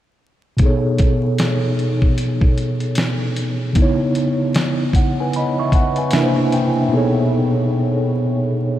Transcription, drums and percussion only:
0.58 kick, closed hi-hat
0.98 kick, closed hi-hat
1.39 snare, closed hi-hat
1.79 closed hi-hat
2.02 kick
2.18 closed hi-hat
2.41 kick
2.58 closed hi-hat
2.80 closed hi-hat
2.95 snare, closed hi-hat
3.36 closed hi-hat
3.75 kick, closed hi-hat
4.15 closed hi-hat
4.55 snare, closed hi-hat
4.93 kick, closed hi-hat
5.33 closed hi-hat
5.72 kick, closed hi-hat
5.96 closed hi-hat
6.11 snare, closed hi-hat
6.52 closed hi-hat

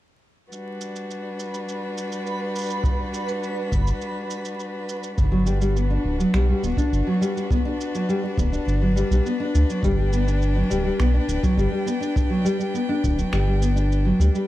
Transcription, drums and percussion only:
0.52 shaker
0.81 shaker
0.96 shaker
1.11 shaker
1.40 shaker
1.54 shaker
1.69 shaker
1.98 shaker
2.12 shaker
2.27 shaker
2.56 shaker
2.58 shaker
2.61 shaker
2.63 shaker
2.66 shaker
2.68 shaker
2.70 shaker
2.84 kick, shaker
3.14 shaker
3.28 shaker
3.43 shaker
3.72 kick, shaker
3.87 shaker
4.01 shaker
4.30 shaker
4.45 shaker
4.60 shaker
4.89 shaker
5.03 shaker
5.18 kick, shaker
5.47 shaker
5.61 shaker
5.77 shaker
6.20 shaker
6.34 finger snap, shaker
6.64 shaker
6.77 kick, shaker
6.93 shaker
7.22 shaker
7.37 shaker
7.51 kick, shaker
7.81 shaker
7.95 shaker
8.10 shaker
8.38 kick, shaker
8.54 shaker
8.68 shaker
8.97 shaker
9.12 shaker
9.26 shaker
9.55 shaker
9.70 shaker
9.83 kick, shaker
10.13 shaker
10.28 shaker
10.42 shaker
10.71 shaker
11.00 finger snap, shaker
11.29 shaker
11.43 kick, shaker
11.59 shaker
11.88 shaker
12.03 shaker
12.16 kick, shaker
12.46 shaker
12.61 shaker
12.75 shaker
13.04 kick, shaker
13.19 shaker
13.33 finger snap, shaker
13.62 shaker
13.77 shaker
13.92 shaker
14.21 shaker
14.35 shaker

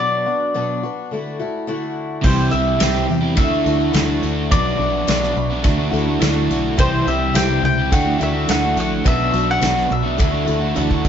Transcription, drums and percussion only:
2.23 kick, crash, tambourine
2.52 tambourine
2.80 snare, ride bell, tambourine
2.95 snare
3.09 tambourine
3.37 kick, ride bell, tambourine
3.66 tambourine
3.93 snare, ride bell, tambourine
4.23 tambourine
4.52 kick, ride bell
5.08 snare, ride bell, tambourine
5.24 snare
5.37 tambourine
5.64 kick, ride bell, tambourine
5.93 tambourine
6.22 snare, ride bell, tambourine
6.51 tambourine
6.79 kick, ride bell, tambourine
7.07 tambourine
7.35 snare, ride bell, tambourine
7.65 tambourine
7.92 kick, ride bell, tambourine
8.21 tambourine
8.49 snare, ride bell, tambourine
8.77 tambourine
9.06 kick, ride bell, tambourine
9.34 tambourine
9.61 snare, ride bell, tambourine
9.78 snare
9.89 tambourine
10.18 kick, ride bell, tambourine
10.48 tambourine
10.76 high tom, tambourine
10.91 kick
11.05 kick, tambourine

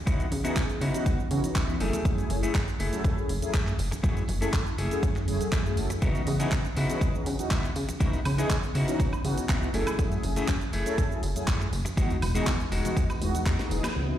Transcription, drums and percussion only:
0.07 kick, closed hi-hat, tambourine, shaker
0.20 closed hi-hat, tambourine, shaker
0.31 open hi-hat, tambourine, high conga
0.45 closed hi-hat, tambourine, shaker
0.56 kick, clap, closed hi-hat, shaker
0.69 closed hi-hat, high conga, shaker
0.81 open hi-hat, tambourine
0.94 closed hi-hat, tambourine, shaker
1.06 kick, closed hi-hat, tambourine, high conga, shaker
1.20 shaker
1.31 open hi-hat, tambourine
1.44 closed hi-hat, tambourine, high conga, shaker
1.56 kick, clap, closed hi-hat, shaker
1.69 shaker
1.80 open hi-hat, tambourine
1.93 closed hi-hat, tambourine, high conga, shaker
2.05 kick, closed hi-hat, shaker
2.18 closed hi-hat, tambourine, shaker
2.30 open hi-hat, tambourine, high conga
2.43 closed hi-hat, tambourine, shaker
2.55 kick, clap, closed hi-hat, shaker
2.68 closed hi-hat, high conga, shaker
2.79 open hi-hat, tambourine
2.93 closed hi-hat, tambourine, shaker
3.04 kick, closed hi-hat, tambourine, high conga, shaker
3.18 shaker
3.29 open hi-hat, tambourine
3.42 closed hi-hat, tambourine, high conga, shaker
3.54 kick, clap, closed hi-hat, shaker
3.67 clap, shaker
3.78 open hi-hat, tambourine
3.92 closed hi-hat, tambourine, high conga, shaker
4.04 kick, closed hi-hat, shaker
4.16 closed hi-hat, tambourine, shaker
4.28 open hi-hat, tambourine, high conga
4.42 closed hi-hat, tambourine, shaker
4.53 kick, clap, closed hi-hat, tambourine, shaker
4.66 closed hi-hat, high conga, shaker
4.78 open hi-hat, tambourine
4.91 closed hi-hat, tambourine, shaker
5.03 kick, closed hi-hat, tambourine, high conga, shaker
5.16 clap, tambourine, shaker
5.28 open hi-hat, tambourine
5.41 closed hi-hat, tambourine, high conga, shaker
5.52 kick, clap, closed hi-hat, tambourine, shaker
5.66 tambourine, shaker
5.77 open hi-hat, tambourine
5.90 closed hi-hat, tambourine, high conga, shaker
6.02 kick, closed hi-hat, tambourine, shaker
6.15 closed hi-hat, tambourine, shaker
6.27 open hi-hat, tambourine, high conga
6.40 closed hi-hat, tambourine, shaker
6.52 kick, clap, closed hi-hat, shaker
6.64 closed hi-hat, high conga, shaker
6.77 open hi-hat, tambourine
6.90 closed hi-hat, tambourine, shaker
7.01 kick, closed hi-hat, tambourine, high conga, shaker
7.15 shaker
7.26 open hi-hat, tambourine
7.39 closed hi-hat, tambourine, high conga, shaker
7.51 kick, clap, closed hi-hat, tambourine, shaker
7.64 clap, shaker
7.76 open hi-hat, tambourine
7.89 closed hi-hat, tambourine, high conga, shaker
8.00 kick, closed hi-hat, tambourine, shaker
8.13 closed hi-hat, tambourine, shaker
8.25 open hi-hat, tambourine, high conga, high woodblock
8.38 closed hi-hat, tambourine, shaker
8.50 kick, clap, closed hi-hat, tambourine, shaker
8.63 closed hi-hat, high conga, shaker
8.75 open hi-hat, tambourine
8.88 closed hi-hat, tambourine, shaker
8.99 kick, closed hi-hat, tambourine, high conga, shaker
9.13 high woodblock, shaker
9.24 open hi-hat, tambourine
9.37 closed hi-hat, tambourine, high conga, shaker
9.49 kick, clap, closed hi-hat, tambourine, shaker
9.63 shaker
9.74 open hi-hat, tambourine
9.87 closed hi-hat, tambourine, high conga, high woodblock, shaker
9.99 kick, closed hi-hat, tambourine, shaker
10.12 closed hi-hat, tambourine, shaker
10.23 open hi-hat, tambourine, high conga
10.36 closed hi-hat, tambourine, shaker
10.48 kick, clap, closed hi-hat, shaker
10.61 closed hi-hat, high conga, shaker
10.73 open hi-hat, tambourine
10.86 closed hi-hat, tambourine, shaker
10.98 kick, closed hi-hat, tambourine, high conga, shaker
11.12 shaker
11.23 open hi-hat, tambourine
11.36 closed hi-hat, tambourine, high conga, shaker
11.48 kick, clap, closed hi-hat, tambourine, shaker
11.61 clap, shaker
11.73 open hi-hat, tambourine
11.85 closed hi-hat, tambourine, high conga, shaker
11.97 kick, closed hi-hat, shaker
12.10 closed hi-hat, tambourine, shaker
12.22 open hi-hat, tambourine, high conga, high woodblock
12.35 closed hi-hat, tambourine, shaker
12.47 kick, clap, closed hi-hat, tambourine, shaker
12.60 closed hi-hat, tambourine, high conga, shaker
12.72 open hi-hat, tambourine
12.85 closed hi-hat, tambourine, low conga, shaker
12.97 kick, closed hi-hat, tambourine, high conga, shaker
13.10 closed hi-hat, tambourine, high woodblock, shaker
13.22 open hi-hat, tambourine
13.35 closed hi-hat, tambourine, high conga, shaker
13.46 kick, snare, clap, closed hi-hat, shaker
13.59 snare, closed hi-hat, tambourine, shaker
13.71 open hi-hat, tambourine
13.84 snare, closed hi-hat, tambourine, high conga, high woodblock, shaker

